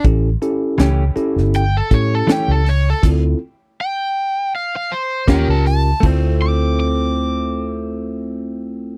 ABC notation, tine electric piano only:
X:1
M:4/4
L:1/8
Q:"Swing 16ths" 1/4=80
K:Dm
V:1 name="Tine electric piano"
[^CEGA] [CEGA] z [CEGA] z [CEGA]2 z | [CEFA] z4 z [_DFGB]2 | [CEFA]8 |]